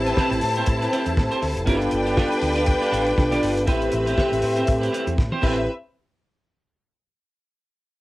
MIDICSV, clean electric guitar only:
0, 0, Header, 1, 3, 480
1, 0, Start_track
1, 0, Key_signature, 0, "minor"
1, 0, Tempo, 501672
1, 1599, Time_signature, 4, 2, 24, 8
1, 7656, End_track
2, 0, Start_track
2, 0, Title_t, "Clean electric guitar"
2, 0, Program_c, 0, 27
2, 62, Note_on_c, 0, 71, 66
2, 73, Note_on_c, 0, 67, 64
2, 81, Note_on_c, 0, 60, 49
2, 157, Note_off_c, 0, 60, 0
2, 167, Note_off_c, 0, 67, 0
2, 169, Note_on_c, 0, 60, 97
2, 171, Note_off_c, 0, 71, 0
2, 179, Note_on_c, 0, 67, 96
2, 183, Note_on_c, 0, 71, 114
2, 294, Note_off_c, 0, 71, 0
2, 303, Note_off_c, 0, 67, 0
2, 363, Note_off_c, 0, 60, 0
2, 540, Note_on_c, 0, 72, 71
2, 546, Note_on_c, 0, 67, 58
2, 554, Note_on_c, 0, 60, 60
2, 639, Note_off_c, 0, 60, 0
2, 643, Note_off_c, 0, 67, 0
2, 655, Note_off_c, 0, 72, 0
2, 777, Note_on_c, 0, 71, 60
2, 788, Note_on_c, 0, 67, 56
2, 791, Note_on_c, 0, 60, 49
2, 875, Note_off_c, 0, 60, 0
2, 881, Note_off_c, 0, 67, 0
2, 886, Note_on_c, 0, 60, 81
2, 889, Note_off_c, 0, 71, 0
2, 892, Note_on_c, 0, 67, 79
2, 901, Note_on_c, 0, 71, 82
2, 1012, Note_off_c, 0, 71, 0
2, 1021, Note_off_c, 0, 67, 0
2, 1081, Note_off_c, 0, 60, 0
2, 1255, Note_on_c, 0, 72, 84
2, 1261, Note_on_c, 0, 67, 77
2, 1265, Note_on_c, 0, 60, 68
2, 1347, Note_off_c, 0, 60, 0
2, 1347, Note_off_c, 0, 67, 0
2, 1360, Note_off_c, 0, 72, 0
2, 1589, Note_on_c, 0, 62, 94
2, 1600, Note_on_c, 0, 65, 79
2, 1608, Note_on_c, 0, 71, 101
2, 1817, Note_off_c, 0, 62, 0
2, 1822, Note_off_c, 0, 65, 0
2, 1826, Note_off_c, 0, 71, 0
2, 1964, Note_on_c, 0, 74, 54
2, 1971, Note_on_c, 0, 65, 49
2, 1980, Note_on_c, 0, 62, 48
2, 2062, Note_off_c, 0, 62, 0
2, 2065, Note_off_c, 0, 65, 0
2, 2073, Note_on_c, 0, 62, 84
2, 2076, Note_on_c, 0, 65, 99
2, 2081, Note_off_c, 0, 74, 0
2, 2085, Note_on_c, 0, 71, 105
2, 2193, Note_off_c, 0, 71, 0
2, 2201, Note_off_c, 0, 65, 0
2, 2273, Note_off_c, 0, 62, 0
2, 2443, Note_on_c, 0, 71, 69
2, 2454, Note_on_c, 0, 65, 58
2, 2457, Note_on_c, 0, 62, 60
2, 2537, Note_off_c, 0, 62, 0
2, 2545, Note_off_c, 0, 65, 0
2, 2548, Note_off_c, 0, 71, 0
2, 2682, Note_on_c, 0, 71, 61
2, 2692, Note_on_c, 0, 65, 62
2, 2697, Note_on_c, 0, 62, 65
2, 2775, Note_off_c, 0, 62, 0
2, 2784, Note_off_c, 0, 65, 0
2, 2787, Note_on_c, 0, 62, 81
2, 2788, Note_off_c, 0, 71, 0
2, 2796, Note_on_c, 0, 65, 83
2, 2799, Note_on_c, 0, 71, 92
2, 2912, Note_off_c, 0, 71, 0
2, 2921, Note_off_c, 0, 65, 0
2, 2990, Note_off_c, 0, 62, 0
2, 3171, Note_on_c, 0, 74, 89
2, 3176, Note_on_c, 0, 65, 76
2, 3181, Note_on_c, 0, 62, 63
2, 3259, Note_off_c, 0, 62, 0
2, 3269, Note_off_c, 0, 65, 0
2, 3271, Note_on_c, 0, 62, 57
2, 3280, Note_off_c, 0, 74, 0
2, 3281, Note_on_c, 0, 65, 61
2, 3283, Note_on_c, 0, 71, 64
2, 3401, Note_off_c, 0, 71, 0
2, 3408, Note_off_c, 0, 65, 0
2, 3435, Note_off_c, 0, 62, 0
2, 3511, Note_on_c, 0, 60, 81
2, 3516, Note_on_c, 0, 67, 80
2, 3524, Note_on_c, 0, 71, 90
2, 3737, Note_off_c, 0, 60, 0
2, 3740, Note_off_c, 0, 67, 0
2, 3743, Note_off_c, 0, 71, 0
2, 3888, Note_on_c, 0, 71, 63
2, 3896, Note_on_c, 0, 67, 62
2, 3899, Note_on_c, 0, 60, 60
2, 3982, Note_off_c, 0, 60, 0
2, 3988, Note_off_c, 0, 67, 0
2, 3993, Note_on_c, 0, 60, 89
2, 3997, Note_off_c, 0, 71, 0
2, 4000, Note_on_c, 0, 67, 90
2, 4008, Note_on_c, 0, 71, 91
2, 4115, Note_off_c, 0, 71, 0
2, 4125, Note_off_c, 0, 67, 0
2, 4193, Note_off_c, 0, 60, 0
2, 4369, Note_on_c, 0, 72, 64
2, 4375, Note_on_c, 0, 67, 61
2, 4384, Note_on_c, 0, 60, 60
2, 4461, Note_off_c, 0, 60, 0
2, 4467, Note_off_c, 0, 67, 0
2, 4478, Note_off_c, 0, 72, 0
2, 4602, Note_on_c, 0, 71, 60
2, 4612, Note_on_c, 0, 67, 56
2, 4619, Note_on_c, 0, 60, 53
2, 4697, Note_off_c, 0, 60, 0
2, 4704, Note_off_c, 0, 67, 0
2, 4708, Note_on_c, 0, 60, 84
2, 4710, Note_off_c, 0, 71, 0
2, 4715, Note_on_c, 0, 67, 91
2, 4721, Note_on_c, 0, 71, 92
2, 4834, Note_off_c, 0, 71, 0
2, 4844, Note_off_c, 0, 67, 0
2, 4910, Note_off_c, 0, 60, 0
2, 5090, Note_on_c, 0, 72, 91
2, 5100, Note_on_c, 0, 67, 65
2, 5107, Note_on_c, 0, 60, 62
2, 5171, Note_off_c, 0, 60, 0
2, 5182, Note_on_c, 0, 60, 79
2, 5183, Note_off_c, 0, 67, 0
2, 5194, Note_on_c, 0, 67, 87
2, 5196, Note_off_c, 0, 72, 0
2, 5201, Note_on_c, 0, 71, 75
2, 5345, Note_off_c, 0, 60, 0
2, 5351, Note_off_c, 0, 67, 0
2, 5354, Note_off_c, 0, 71, 0
2, 7656, End_track
3, 0, Start_track
3, 0, Title_t, "Muted clean electric guitar strokes"
3, 305, Note_on_c, 9, 29, 44
3, 401, Note_off_c, 9, 29, 0
3, 411, Note_on_c, 9, 29, 49
3, 506, Note_off_c, 9, 29, 0
3, 650, Note_on_c, 9, 29, 47
3, 746, Note_off_c, 9, 29, 0
3, 1024, Note_on_c, 9, 29, 45
3, 1120, Note_off_c, 9, 29, 0
3, 1123, Note_on_c, 9, 29, 39
3, 1218, Note_off_c, 9, 29, 0
3, 1358, Note_on_c, 9, 29, 53
3, 1454, Note_off_c, 9, 29, 0
3, 1492, Note_on_c, 9, 29, 44
3, 1587, Note_off_c, 9, 29, 0
3, 1833, Note_on_c, 9, 29, 44
3, 1928, Note_off_c, 9, 29, 0
3, 2204, Note_on_c, 9, 29, 47
3, 2300, Note_off_c, 9, 29, 0
3, 2308, Note_on_c, 9, 29, 43
3, 2403, Note_off_c, 9, 29, 0
3, 2549, Note_on_c, 9, 29, 39
3, 2645, Note_off_c, 9, 29, 0
3, 2923, Note_on_c, 9, 29, 41
3, 3019, Note_off_c, 9, 29, 0
3, 3034, Note_on_c, 9, 29, 52
3, 3130, Note_off_c, 9, 29, 0
3, 3412, Note_on_c, 9, 29, 49
3, 3508, Note_off_c, 9, 29, 0
3, 3754, Note_on_c, 9, 29, 45
3, 3850, Note_off_c, 9, 29, 0
3, 4127, Note_on_c, 9, 29, 45
3, 4223, Note_off_c, 9, 29, 0
3, 4236, Note_on_c, 9, 29, 46
3, 4331, Note_off_c, 9, 29, 0
3, 4472, Note_on_c, 9, 29, 39
3, 4568, Note_off_c, 9, 29, 0
3, 4845, Note_on_c, 9, 29, 44
3, 4941, Note_off_c, 9, 29, 0
3, 4958, Note_on_c, 9, 29, 39
3, 5054, Note_off_c, 9, 29, 0
3, 7656, End_track
0, 0, End_of_file